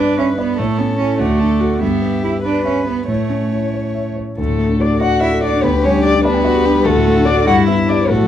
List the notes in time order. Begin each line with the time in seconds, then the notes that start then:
Already playing: G2 D4 B4 D5
0.18 C#4 E5
0.38 B3 D5
0.57 A2 A3 A4 C#5
0.78 B3 C#4
0.99 C#4 E4 A4
1.19 D2 A3 F#4 D5
1.40 D4 A4
1.60 F#4 A4
1.79 G2 B3 G4 E5
2.02 B3
2.22 E4 G4
2.43 D4 B4
2.65 C#4 E5
2.87 B3 B4
3.07 A2 A3 C#5
3.30 C#4
3.52 E4
3.74 C#5
3.94 E5
4.16 C#5
4.37 D2 A3 A4
4.48 A2
4.58 A3
4.69 D4
4.79 D4 F#4 D5
4.91 A4
5.01 F#4 D5 F#5
5.12 F#5
5.21 E4 D5 E5
5.32 A4
5.42 D4 F#4 D5
5.53 D4
5.62 D2 B3 G4 B4
5.73 D3
5.82 G3 C#4 C#5
5.95 D4
6.04 D4 G4 D5
6.15 D4
6.23 B3 D4 B4 D5
6.34 G5
6.45 F#4 D5
6.55 G4
6.66 D4 G4
6.76 G3
6.84 D2 A3 F#4 A4
6.96 A2
7.06 A3
7.17 D4
7.25 D4 F#4 D5
7.37 A4
7.46 G2 E4 F#4 F#5
7.58 G3
7.66 B3 E4 E5
7.78 E4
7.86 D4 G4 D5
8.00 B4
8.07 A2 A3 F#4 A4
8.21 F#3